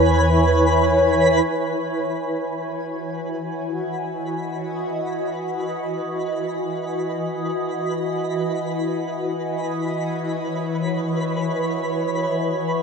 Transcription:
Already playing: sub bass E2, ambient pad E3 E4 B4 C#5 G#5, synth texture B4 B5
1.47 synth texture B4 B5
1.82 ambient pad F#4
3.21 ambient pad D#5
9.23 ambient pad E3
9.63 ambient pad B4
10.00 ambient pad C#5

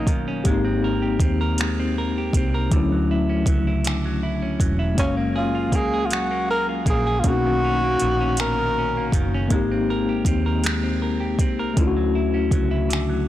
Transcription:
Already playing: clean electric guitar B2 A#3 C#4, tine electric piano F#3 A#3 C#4 D#4, tenor saxophone D#4
0.07 fingered electric bass F#1, clean electric guitar D#3, kick, closed hi-hat
0.28 clean electric guitar C#4
0.44 fingered electric bass G#1, clean electric guitar G#3, tine electric piano A#3 C4 G4, kick, closed hi-hat
0.50 tine electric piano D#4
0.65 clean electric guitar C4
0.84 clean electric guitar A#4
1.02 clean electric guitar G4
1.20 fingered electric bass D#2, clean electric guitar C4, kick, closed hi-hat
1.41 clean electric guitar A#4
1.58 clean electric guitar G#3, finger snap, closed hi-hat
1.80 clean electric guitar C4
1.98 clean electric guitar A#4
2.18 clean electric guitar G4
2.33 fingered electric bass C2, clean electric guitar C4, kick, closed hi-hat
2.54 clean electric guitar A#4
2.70 fingered electric bass D2, clean electric guitar D3, tine electric piano E3 A3, kick, closed hi-hat
2.74 tine electric piano F#3 C#4 E4
2.92 clean electric guitar F#3
3.11 clean electric guitar E4
3.29 clean electric guitar C#4
3.46 fingered electric bass C#2, clean electric guitar F#3, kick, closed hi-hat
3.67 clean electric guitar E4
3.85 clean electric guitar D3, finger snap, closed hi-hat
4.05 clean electric guitar F#3
4.23 clean electric guitar E4
4.42 clean electric guitar C#4
4.60 fingered electric bass E1, clean electric guitar F#3, kick, closed hi-hat
4.79 clean electric guitar E4
4.95 tine electric piano G#3 A#3, kick, closed hi-hat
4.99 fingered electric bass F#1, clean electric guitar F#3, tine electric piano C#4 F5, tenor saxophone C#4
5.17 clean electric guitar A#3
5.36 tenor saxophone F4, clean electric guitar G#4
5.55 clean electric guitar F4
5.72 fingered electric bass C#2, clean electric guitar A#3, tenor saxophone G#4, kick, closed hi-hat
5.94 clean electric guitar G#4
6.06 tenor saxophone F4
6.11 clean electric guitar F#3, tenor saxophone F#4, finger snap, closed hi-hat
6.31 clean electric guitar A#3
6.51 clean electric guitar G#4, tenor saxophone A#4
6.69 clean electric guitar F4
6.86 fingered electric bass A#1, clean electric guitar A#3, tenor saxophone G#4, kick, closed hi-hat
7.07 clean electric guitar G#4
7.20 tenor saxophone F4
7.24 fingered electric bass B1, clean electric guitar B2, tine electric piano A#3 C#4, tenor saxophone F#4, kick, closed hi-hat
7.28 tine electric piano D4 F#4
7.34 tine electric piano D#4
7.46 clean electric guitar D#3
7.65 clean electric guitar C#4
7.83 clean electric guitar A#3
8.00 fingered electric bass A#1, clean electric guitar D#3, closed hi-hat
8.21 clean electric guitar C#4
8.37 clean electric guitar B2, tenor saxophone A#4, finger snap, closed hi-hat
8.59 clean electric guitar D#3
8.79 clean electric guitar C#4
8.97 clean electric guitar A#3
9.12 fingered electric bass F#1, clean electric guitar D#3, kick, closed hi-hat
9.34 clean electric guitar C#4
9.49 fingered electric bass G#1, clean electric guitar G#3, tine electric piano A#3 C4, kick, closed hi-hat
9.53 tine electric piano D#4 G4
9.72 clean electric guitar C4
9.90 clean electric guitar A#4
10.09 clean electric guitar G4
10.25 fingered electric bass D#2, clean electric guitar C4, kick, closed hi-hat
10.46 clean electric guitar A#4
10.64 clean electric guitar G#3, finger snap, closed hi-hat
10.84 clean electric guitar C4
11.02 clean electric guitar A#4
11.20 clean electric guitar G4
11.39 fingered electric bass C2, clean electric guitar C4, kick, closed hi-hat
11.59 clean electric guitar A#4
11.74 tine electric piano A3 C#4, kick, closed hi-hat
11.78 fingered electric bass D2, clean electric guitar D3, tine electric piano E4 F4
11.87 tine electric piano F#4
11.97 clean electric guitar F#3
12.15 clean electric guitar E4
12.34 clean electric guitar C#4
12.51 fingered electric bass C#2, clean electric guitar F#3, kick, closed hi-hat
12.71 clean electric guitar E4
12.90 clean electric guitar D3, finger snap, closed hi-hat
13.10 clean electric guitar F#3

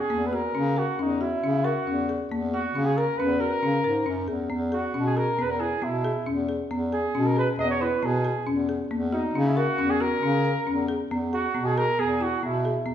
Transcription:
0.00 flugelhorn G#4
0.10 bass clarinet E2, marimba A#3
0.26 flugelhorn B4
0.33 marimba F#4, flugelhorn A#4
0.55 bass clarinet C#3, marimba C#4
0.76 flugelhorn F#4, marimba A#4
0.99 bass clarinet E2, marimba C#4, flugelhorn D#4
1.21 flugelhorn E4, marimba F#4
1.42 bass clarinet C#3, marimba C#4
1.64 flugelhorn F#4, marimba A#4
1.87 bass clarinet E2, marimba C#4
2.09 marimba G#4
2.32 bass clarinet E2, marimba A#3
2.54 flugelhorn F#4, marimba F#4
2.74 bass clarinet C#3, marimba C#4
2.85 flugelhorn G#4
2.97 flugelhorn A#4, marimba A#4
3.18 bass clarinet E2, marimba C#4, flugelhorn B4
3.40 marimba F#4, flugelhorn A#4
3.63 bass clarinet C#3, marimba C#4
3.84 bass clarinet G#2, marimba A#4
4.06 bass clarinet F#2, marimba C#4
4.28 bass clarinet E2, marimba G#4
4.50 bass clarinet E2, marimba B3
4.72 flugelhorn F#4, marimba G#4
4.94 bass clarinet B2, marimba C#4
5.06 flugelhorn G#4
5.17 marimba G#4, flugelhorn A#4
5.39 bass clarinet E2, marimba B3, flugelhorn B4
5.50 flugelhorn A#4
5.60 marimba E4, flugelhorn G#4
5.82 bass clarinet B2, marimba B3, flugelhorn E4
6.05 marimba G#4
6.26 bass clarinet E2, marimba C#4
6.49 marimba G#4
6.71 bass clarinet E2, marimba B3
6.93 marimba G#4, flugelhorn G#4
7.15 bass clarinet B2, marimba C#4
7.26 flugelhorn A#4
7.37 marimba G#4, flugelhorn B4
7.59 bass clarinet E2, marimba B3, flugelhorn D#5
7.70 flugelhorn C#5
7.81 marimba E4, flugelhorn B4
8.03 bass clarinet B2, marimba B3, flugelhorn G#4
8.25 marimba G#4
8.47 bass clarinet E2, marimba C#4
8.69 marimba G#4
8.91 bass clarinet E2, marimba A#3
9.13 flugelhorn D#4, marimba F#4
9.34 bass clarinet C#3, marimba C#4
9.46 flugelhorn E4
9.56 flugelhorn F#4, marimba A#4
9.78 bass clarinet E2, marimba C#4
9.90 flugelhorn G#4
10.00 marimba F#4, flugelhorn A#4
10.22 bass clarinet C#3, marimba C#4
10.45 marimba A#4
10.67 bass clarinet E2, marimba C#4
10.88 marimba G#4
11.11 bass clarinet E2, marimba B3
11.33 flugelhorn F#4, marimba G#4
11.55 bass clarinet B2, marimba B3
11.66 flugelhorn G#4
11.77 marimba G#4, flugelhorn A#4
11.99 bass clarinet E2, marimba B3, flugelhorn G#4
12.21 marimba E4, flugelhorn F#4
12.43 bass clarinet B2, marimba B3, flugelhorn E4
12.65 marimba G#4
12.86 bass clarinet E2, marimba B3

